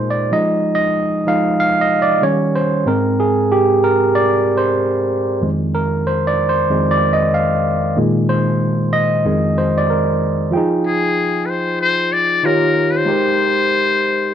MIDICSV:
0, 0, Header, 1, 3, 480
1, 0, Start_track
1, 0, Tempo, 638298
1, 230, Time_signature, 4, 2, 24, 8
1, 10784, End_track
2, 0, Start_track
2, 0, Title_t, "Muted trumpet"
2, 0, Program_c, 0, 59
2, 8169, Note_on_c, 0, 68, 91
2, 8614, Note_on_c, 0, 71, 59
2, 8626, Note_off_c, 0, 68, 0
2, 8646, Note_on_c, 0, 72, 83
2, 8657, Note_off_c, 0, 71, 0
2, 8875, Note_off_c, 0, 72, 0
2, 8879, Note_on_c, 0, 72, 100
2, 9119, Note_on_c, 0, 74, 96
2, 9130, Note_off_c, 0, 72, 0
2, 9367, Note_on_c, 0, 70, 86
2, 9378, Note_off_c, 0, 74, 0
2, 9708, Note_on_c, 0, 71, 63
2, 9719, Note_off_c, 0, 70, 0
2, 9750, Note_on_c, 0, 72, 92
2, 9762, Note_off_c, 0, 71, 0
2, 10784, Note_off_c, 0, 72, 0
2, 10784, End_track
3, 0, Start_track
3, 0, Title_t, "Tine electric piano"
3, 0, Program_c, 1, 4
3, 0, Control_c, 1, 64, 127
3, 0, Note_on_c, 1, 46, 45
3, 0, Note_on_c, 1, 56, 43
3, 0, Note_on_c, 1, 63, 49
3, 0, Note_on_c, 1, 72, 86
3, 79, Note_on_c, 1, 74, 81
3, 85, Note_off_c, 1, 72, 0
3, 235, Note_on_c, 1, 53, 53
3, 239, Note_off_c, 1, 74, 0
3, 241, Note_off_c, 1, 56, 0
3, 241, Control_c, 1, 64, 0
3, 241, Note_on_c, 1, 56, 50
3, 242, Note_off_c, 1, 63, 0
3, 245, Note_off_c, 1, 46, 0
3, 246, Note_on_c, 1, 63, 56
3, 247, Note_on_c, 1, 75, 95
3, 388, Control_c, 1, 64, 127
3, 554, Note_off_c, 1, 75, 0
3, 563, Note_on_c, 1, 75, 100
3, 572, Note_off_c, 1, 53, 0
3, 575, Note_off_c, 1, 56, 0
3, 577, Note_off_c, 1, 63, 0
3, 929, Note_off_c, 1, 75, 0
3, 951, Note_on_c, 1, 53, 50
3, 956, Note_on_c, 1, 56, 45
3, 958, Note_on_c, 1, 63, 54
3, 963, Note_on_c, 1, 77, 94
3, 1166, Note_off_c, 1, 53, 0
3, 1169, Note_off_c, 1, 56, 0
3, 1170, Note_off_c, 1, 63, 0
3, 1194, Note_off_c, 1, 77, 0
3, 1203, Note_on_c, 1, 77, 100
3, 1361, Note_off_c, 1, 77, 0
3, 1363, Note_on_c, 1, 75, 93
3, 1520, Note_on_c, 1, 74, 94
3, 1521, Note_off_c, 1, 75, 0
3, 1665, Note_on_c, 1, 51, 53
3, 1669, Note_on_c, 1, 55, 49
3, 1675, Note_on_c, 1, 61, 60
3, 1678, Control_c, 1, 64, 0
3, 1678, Note_on_c, 1, 73, 89
3, 1680, Note_off_c, 1, 74, 0
3, 1791, Control_c, 1, 64, 127
3, 1921, Note_off_c, 1, 73, 0
3, 1921, Note_on_c, 1, 72, 91
3, 2123, Note_off_c, 1, 51, 0
3, 2126, Note_off_c, 1, 55, 0
3, 2129, Note_off_c, 1, 61, 0
3, 2149, Note_on_c, 1, 44, 55
3, 2153, Note_on_c, 1, 56, 52
3, 2157, Note_on_c, 1, 60, 62
3, 2158, Control_c, 1, 64, 0
3, 2163, Note_off_c, 1, 72, 0
3, 2163, Note_on_c, 1, 70, 85
3, 2291, Control_c, 1, 64, 127
3, 2403, Note_off_c, 1, 70, 0
3, 2405, Note_on_c, 1, 68, 85
3, 2621, Note_off_c, 1, 68, 0
3, 2645, Note_on_c, 1, 67, 83
3, 2839, Note_off_c, 1, 44, 0
3, 2841, Note_off_c, 1, 56, 0
3, 2843, Note_off_c, 1, 60, 0
3, 2884, Note_off_c, 1, 67, 0
3, 2886, Note_on_c, 1, 70, 87
3, 3122, Note_on_c, 1, 74, 97
3, 3125, Note_off_c, 1, 70, 0
3, 3440, Note_on_c, 1, 72, 92
3, 3446, Note_off_c, 1, 74, 0
3, 4069, Note_on_c, 1, 41, 59
3, 4073, Note_on_c, 1, 51, 50
3, 4080, Control_c, 1, 64, 0
3, 4080, Note_on_c, 1, 56, 60
3, 4125, Note_off_c, 1, 72, 0
3, 4218, Control_c, 1, 64, 127
3, 4321, Note_on_c, 1, 70, 87
3, 4562, Note_off_c, 1, 70, 0
3, 4564, Note_on_c, 1, 72, 90
3, 4717, Note_on_c, 1, 74, 90
3, 4722, Note_off_c, 1, 72, 0
3, 4863, Note_off_c, 1, 74, 0
3, 4882, Note_on_c, 1, 72, 83
3, 5027, Note_off_c, 1, 41, 0
3, 5030, Note_off_c, 1, 51, 0
3, 5034, Note_off_c, 1, 56, 0
3, 5036, Note_on_c, 1, 41, 49
3, 5039, Note_on_c, 1, 51, 47
3, 5043, Note_on_c, 1, 56, 58
3, 5174, Note_off_c, 1, 72, 0
3, 5196, Note_on_c, 1, 74, 86
3, 5249, Note_off_c, 1, 41, 0
3, 5251, Note_off_c, 1, 51, 0
3, 5253, Note_off_c, 1, 56, 0
3, 5358, Note_off_c, 1, 74, 0
3, 5362, Note_on_c, 1, 75, 84
3, 5505, Note_off_c, 1, 75, 0
3, 5521, Note_on_c, 1, 77, 82
3, 5739, Note_off_c, 1, 77, 0
3, 5988, Note_on_c, 1, 46, 58
3, 5992, Note_on_c, 1, 51, 52
3, 5998, Note_on_c, 1, 56, 66
3, 6000, Control_c, 1, 64, 0
3, 6110, Control_c, 1, 64, 127
3, 6235, Note_on_c, 1, 72, 94
3, 6714, Note_on_c, 1, 75, 101
3, 6727, Note_off_c, 1, 72, 0
3, 6919, Note_off_c, 1, 46, 0
3, 6921, Note_off_c, 1, 51, 0
3, 6924, Note_off_c, 1, 56, 0
3, 6956, Note_on_c, 1, 41, 59
3, 6958, Note_on_c, 1, 51, 51
3, 6961, Control_c, 1, 64, 0
3, 6964, Note_on_c, 1, 56, 65
3, 7084, Control_c, 1, 64, 127
3, 7162, Note_off_c, 1, 75, 0
3, 7203, Note_on_c, 1, 72, 86
3, 7347, Note_off_c, 1, 72, 0
3, 7352, Note_on_c, 1, 74, 82
3, 7441, Note_off_c, 1, 74, 0
3, 7444, Note_on_c, 1, 70, 68
3, 7643, Note_off_c, 1, 41, 0
3, 7644, Note_off_c, 1, 51, 0
3, 7647, Note_off_c, 1, 56, 0
3, 7661, Note_off_c, 1, 70, 0
3, 7902, Note_on_c, 1, 53, 69
3, 7913, Note_on_c, 1, 65, 60
3, 7921, Control_c, 1, 64, 0
3, 7922, Note_on_c, 1, 79, 61
3, 7937, Note_on_c, 1, 68, 64
3, 7949, Note_on_c, 1, 63, 81
3, 8045, Control_c, 1, 64, 127
3, 9317, Note_off_c, 1, 53, 0
3, 9323, Note_off_c, 1, 65, 0
3, 9327, Note_off_c, 1, 79, 0
3, 9335, Note_off_c, 1, 68, 0
3, 9341, Note_off_c, 1, 63, 0
3, 9348, Note_on_c, 1, 51, 56
3, 9353, Note_on_c, 1, 63, 55
3, 9359, Control_c, 1, 64, 0
3, 9360, Note_on_c, 1, 65, 57
3, 9365, Note_on_c, 1, 67, 52
3, 9373, Note_on_c, 1, 73, 61
3, 9477, Control_c, 1, 64, 127
3, 9815, Note_on_c, 1, 56, 58
3, 9817, Note_off_c, 1, 63, 0
3, 9826, Note_on_c, 1, 63, 55
3, 9829, Note_off_c, 1, 51, 0
3, 9830, Note_off_c, 1, 67, 0
3, 9835, Note_off_c, 1, 65, 0
3, 9838, Control_c, 1, 64, 0
3, 9839, Note_on_c, 1, 67, 53
3, 9842, Note_off_c, 1, 73, 0
3, 9848, Note_on_c, 1, 70, 54
3, 9861, Note_on_c, 1, 72, 69
3, 9986, Control_c, 1, 64, 127
3, 10784, Note_off_c, 1, 56, 0
3, 10784, Note_off_c, 1, 63, 0
3, 10784, Note_off_c, 1, 67, 0
3, 10784, Note_off_c, 1, 70, 0
3, 10784, Note_off_c, 1, 72, 0
3, 10784, End_track
0, 0, End_of_file